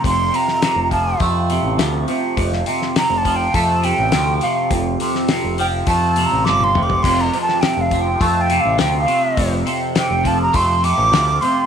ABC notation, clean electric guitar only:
X:1
M:4/4
L:1/8
Q:1/4=103
K:F
V:1 name="Clean electric guitar" clef=bass
[F,,C,F,A,] C, C, F, A, C, F, C, | F,, C, C, F, A, C, F, C, | F,, C, C, F, A, C, F, C, | F,, C, C, F, A, C, F, C, |
F,, C, C, F, A, C, F, C, |]